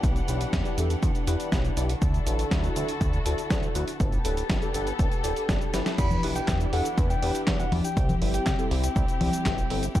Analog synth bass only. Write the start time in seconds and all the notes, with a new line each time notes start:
0.03 B1
0.28 B1
0.53 E2
0.78 E2
1.03 E2
1.27 E2
1.52 B1
1.77 B1
2.02 D2
2.27 A1
2.51 D2
2.76 D2
3.01 D2
3.26 D2
3.51 D2
3.75 D2
4.00 G1
4.25 D1
4.50 G1
4.75 G1
4.99 D1
5.24 D1
5.49 G1
5.74 G1
5.98 E2
6.23 B1
6.48 E2
6.73 E2
6.98 E2
7.22 E2
7.47 E2
7.72 E2
7.97 C2
8.22 G1
8.46 C2
8.71 C2
8.96 C2
9.21 C2
9.46 G1
9.71 G1
9.95 E2